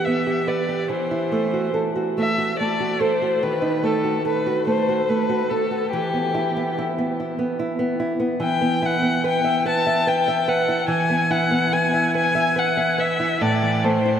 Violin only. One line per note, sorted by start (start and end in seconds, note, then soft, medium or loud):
0.05 0.49 E5 soft
0.48 0.90 D5 soft
0.92 1.75 C5 soft
2.19 2.57 E5 soft
2.59 3.03 D5 soft
3.01 3.44 C5 soft
3.42 3.86 B4 soft
3.85 4.26 A4 soft
4.27 4.67 B4 soft
4.68 5.11 C5 medium
5.09 5.51 B4 medium
5.50 5.92 A4 soft
5.92 6.77 G4 soft
8.43 8.87 G5 medium
8.85 9.26 F#5 medium
9.28 9.67 G5 medium
9.69 10.09 A5 medium
10.08 10.50 G5 medium
10.48 10.89 F#5 medium
10.89 11.32 G#5 medium
11.31 11.74 F#5 medium
11.73 12.15 G#5 medium
12.16 12.60 G#5 medium
12.58 13.01 F#5 medium
13.00 13.43 E5 medium
13.41 13.86 D5 medium
13.84 14.20 C5 medium